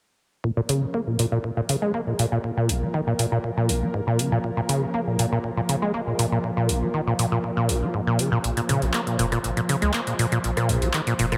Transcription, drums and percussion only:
0.44 kick
0.69 open hi-hat
0.94 kick
1.19 open hi-hat
1.44 kick
1.69 open hi-hat
1.94 kick
2.19 open hi-hat
2.44 kick
2.69 open hi-hat
2.94 kick
3.19 open hi-hat
3.44 kick
3.69 open hi-hat
3.94 kick
4.19 open hi-hat
4.44 kick
4.69 open hi-hat
4.94 kick
5.19 open hi-hat
5.44 kick
5.69 open hi-hat
5.94 kick
6.19 open hi-hat
6.44 kick
6.69 open hi-hat
6.94 kick
7.19 open hi-hat
7.44 kick
7.69 open hi-hat
7.94 kick
8.19 open hi-hat
8.44 kick, closed hi-hat
8.57 closed hi-hat
8.69 open hi-hat
8.82 closed hi-hat
8.94 kick, clap, closed hi-hat
9.07 closed hi-hat
9.19 open hi-hat
9.32 cross-stick, closed hi-hat
9.44 kick, closed hi-hat
9.57 closed hi-hat
9.69 open hi-hat
9.82 closed hi-hat
9.94 kick, clap, closed hi-hat
10.07 closed hi-hat
10.19 open hi-hat
10.32 closed hi-hat
10.44 kick, closed hi-hat
10.57 cross-stick, closed hi-hat
10.69 open hi-hat
10.82 closed hi-hat
10.94 kick, clap, closed hi-hat
11.07 closed hi-hat
11.19 open hi-hat
11.32 cross-stick, closed hi-hat

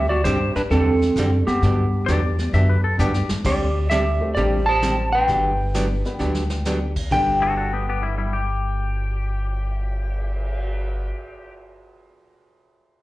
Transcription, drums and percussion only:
0.25 snare, hi-hat pedal
0.56 snare
0.71 brush sweep, snare
1.02 snare
1.16 snare, hi-hat pedal
1.47 snare
1.62 brush sweep, snare
2.08 snare, hi-hat pedal
2.38 snare
2.53 brush sweep, snare
2.99 hi-hat pedal
3.14 snare
3.29 snare
3.45 brush sweep, kick, snare, crash
3.90 snare, hi-hat pedal
4.36 brush sweep, snare
4.82 snare, hi-hat pedal
5.28 brush sweep, snare
5.74 snare, hi-hat pedal
6.05 snare
6.20 snare
6.35 snare
6.50 snare
6.65 snare, hi-hat pedal
6.96 kick, crash
7.11 kick, crash
7.43 cymbal swell

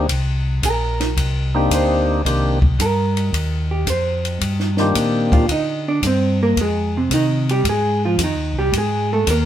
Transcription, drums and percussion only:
0.09 kick, ride
0.63 kick, hi-hat pedal, ride
1.00 snare, ride
1.17 kick, ride
1.71 kick, hi-hat pedal, ride
2.25 kick, ride
2.62 kick
2.79 kick, hi-hat pedal, ride
3.17 ride
3.33 kick, ride
3.87 kick, hi-hat pedal, ride
4.25 ride
4.41 kick, ride
4.60 snare
4.77 snare
4.95 kick, hi-hat pedal, ride
5.32 kick, ride
5.49 kick, ride
6.03 kick, hi-hat pedal, ride
6.57 kick, ride
7.11 kick, hi-hat pedal, ride
7.49 ride
7.65 kick, ride
8.18 kick, hi-hat pedal, ride
8.73 kick, ride
9.27 kick, hi-hat pedal, ride

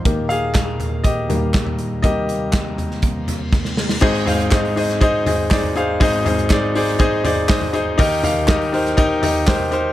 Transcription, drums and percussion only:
0.05 kick, closed hi-hat
0.30 closed hi-hat
0.55 kick, snare, clap, closed hi-hat
0.80 closed hi-hat, floor tom
1.04 kick, closed hi-hat
1.30 closed hi-hat, floor tom
1.54 kick, snare, clap, closed hi-hat
1.67 floor tom
1.79 closed hi-hat
2.04 kick, closed hi-hat
2.29 closed hi-hat
2.53 kick, snare, clap, closed hi-hat
2.78 closed hi-hat, floor tom
2.91 snare
3.02 kick, closed hi-hat
3.28 closed hi-hat, floor tom
3.52 kick, snare
3.65 snare
3.77 snare
3.89 snare
4.02 kick, crash
4.15 open hi-hat
4.27 floor tom, hi-hat pedal, open hi-hat
4.39 hi-hat pedal
4.52 kick, snare, clap, hi-hat pedal, open hi-hat
4.65 open hi-hat
4.77 hi-hat pedal, open hi-hat
4.89 snare, hi-hat pedal
5.01 kick, hi-hat pedal, open hi-hat
5.26 floor tom, hi-hat pedal, open hi-hat
5.51 kick, snare, clap, hi-hat pedal, open hi-hat
5.63 floor tom
5.76 hi-hat pedal, open hi-hat
6.01 kick, hi-hat pedal, open hi-hat
6.13 open hi-hat
6.26 floor tom, hi-hat pedal, open hi-hat
6.38 hi-hat pedal
6.50 kick, snare, clap, hi-hat pedal, open hi-hat
6.75 hi-hat pedal, open hi-hat
6.87 snare
6.99 kick, hi-hat pedal, open hi-hat
7.25 floor tom, hi-hat pedal, open hi-hat
7.49 kick, snare, clap, hi-hat pedal, open hi-hat
7.61 floor tom
7.74 hi-hat pedal, open hi-hat
7.98 kick, hi-hat pedal, open hi-hat
8.24 floor tom, hi-hat pedal, open hi-hat
8.48 kick, snare, clap, hi-hat pedal, open hi-hat
8.61 open hi-hat
8.73 hi-hat pedal, open hi-hat
8.86 snare, hi-hat pedal
8.97 kick, hi-hat pedal, open hi-hat
9.23 floor tom, hi-hat pedal, open hi-hat
9.48 kick, snare, clap, hi-hat pedal, open hi-hat
9.60 floor tom
9.72 hi-hat pedal, open hi-hat

